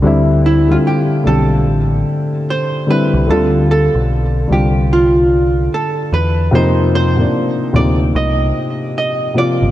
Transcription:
X:1
M:4/4
L:1/16
Q:"Swing 16ths" 1/4=74
K:Flyd
V:1 name="Hollow-body jazz guitar"
z2 E F G2 A6 c2 B2 | A2 A4 G2 F4 A2 B2 | c2 c4 d2 _e4 e2 d2 |]
V:2 name="Felt piano" clef=bass
[D,G,CE]3 [D,G,CF]3 [D,G,CG]6- [D,G,CG] z [D,G,CE]2 | [D,G,CF]4- [D,G,CF] z [D,G,CF]6- [D,G,CF] z3 | [C,F,_B,_E]3 [C,F,B,D]3 [C,F,B,E]6- [C,F,B,E] z [C,F,B,F]2 |]
V:3 name="Picked electric bass" clef=bass
D,,4 z2 B,,,2 A,,,2 z4 z C,, | D,,3 B,,,3 C,,6 z2 E,,2 | F,,4 z2 D,,2 C,,2 z4 z G,,, |]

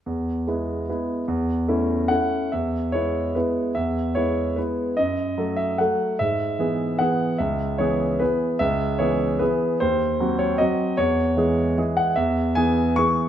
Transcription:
X:1
M:3/4
L:1/8
Q:1/4=149
K:E
V:1 name="Grand piano"
z6 | z4 f2 | e2 c2 B2 | e2 c2 B2 |
d3 e f2 | e4 f2 | e2 c2 B2 | e2 c2 B2 |
=c3 ^c _e2 | c4 z f | e2 g2 c'2 |]
V:2 name="Grand piano"
E,,2 [G,B,E]2 [G,B,E]2 | E,,2 [A,CE]2 [A,CE]2 | E,,2 [G,B,E]2 [G,B,E]2 | E,,2 [G,B,E]2 [G,B,E]2 |
F,,2 [F,A,A]2 [F,A,A]2 | G,,2 [E,B,G]2 [E,B,G]2 | C,,2 [E,B,G]2 [E,B,G]2 | C,,2 [E,B,G]2 [E,B,G]2 |
_E,,2 [_G,=C_G]2 [G,CG]2 | E,,2 [E,G,G]2 [E,G,G]2 | E,,2 [E,B,G]2 [E,B,G]2 |]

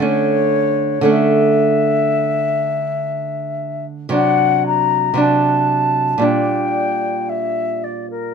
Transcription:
X:1
M:4/4
L:1/16
Q:1/4=58
K:Aphr
V:1 name="Flute"
^c4 e8- e3 z | ^f2 b2 a4 g4 e2 d B |]
V:2 name="Nylon-string guitar" clef=bass
[D,A,^C]4 [D,A,C]12 | [C,^F,D]4 [C,F,D]4 [B,,G,D]8 |]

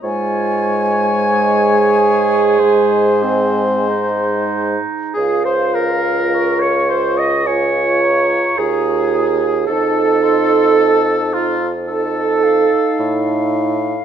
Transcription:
X:1
M:4/4
L:1/16
Q:1/4=54
K:Db
V:1 name="Flute"
a12 z4 | f4 d'4 a2 b6 | =a2 c'2 a2 b2 a2 f6 |]
V:2 name="Oboe"
d8 c6 z2 | A c B3 d c e d4 A4 | =A6 F z A6 z2 |]
V:3 name="Clarinet"
F4 A6 C2 E4 | A c B3 d c e d4 A4 | =A6 F z A6 z2 |]
V:4 name="French horn"
A,8 A,6 z2 | F8 F4 F4 | E6- E z E8 |]
V:5 name="Bassoon" clef=bass
A,,8 A,,6 z2 | D,,12 E,,4 | F,,8- F,,3 z =A,,4 |]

